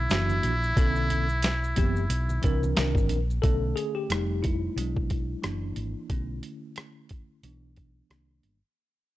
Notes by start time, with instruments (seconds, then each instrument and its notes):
Already playing: muted trumpet E4
0.09 fingered electric bass F#1, tine electric piano E3 A#3 D4 F#4, snare, closed hi-hat, maracas
0.30 high conga, maracas
0.43 fingered electric bass A#1, closed hi-hat, low conga, maracas
0.64 maracas
0.75 fingered electric bass B1, tine electric piano C#3 B3 C#4 A4, kick, closed hi-hat, maracas
0.83 tine electric piano D3
0.96 maracas
1.10 closed hi-hat, low conga, maracas
1.29 maracas
1.42 snare, closed hi-hat, maracas
1.64 maracas
1.76 fingered electric bass F#1, tine electric piano E3 B3 C4 G4, kick, closed hi-hat, low conga, maracas
1.96 maracas
2.10 fingered electric bass B1, closed hi-hat, maracas
2.29 high conga, maracas
2.42 fingered electric bass C2, tine electric piano E3 C4 D4 A#4, kick, closed hi-hat, maracas
2.63 high conga, maracas
2.76 fingered electric bass C2, tine electric piano D#3 C4 D4 A#4, snare, closed hi-hat, maracas
2.95 fingered electric bass G1, kick, high conga, maracas
3.09 fingered electric bass A#1, closed hi-hat, low conga, maracas
3.30 maracas
3.42 fingered electric bass B1, tine electric piano D3 A3 C#4 A4, kick, closed hi-hat
3.76 tine electric piano G#4, closed hi-hat
3.95 tine electric piano G4
4.10 fingered electric bass F1, tine electric piano G3 A3 D#4, cross-stick, closed hi-hat
4.43 tine electric piano E4, kick, closed hi-hat
4.76 fingered electric bass B1, tine electric piano F#3 G#3 D4, closed hi-hat
4.96 kick
5.10 kick, closed hi-hat
5.42 fingered electric bass F#1, tine electric piano E3 A#3 D4, cross-stick, closed hi-hat
5.76 fingered electric bass G#1, closed hi-hat
6.10 fingered electric bass B1, tine electric piano D3 A3 C#4, kick, closed hi-hat
6.43 closed hi-hat
6.76 cross-stick, closed hi-hat
7.09 kick, closed hi-hat
7.43 fingered electric bass B1, tine electric piano E3 B3 D4, closed hi-hat
7.76 kick, closed hi-hat
8.10 fingered electric bass C2, tine electric piano D#3 A#3 D4, cross-stick, closed hi-hat
8.43 fingered electric bass G1, closed hi-hat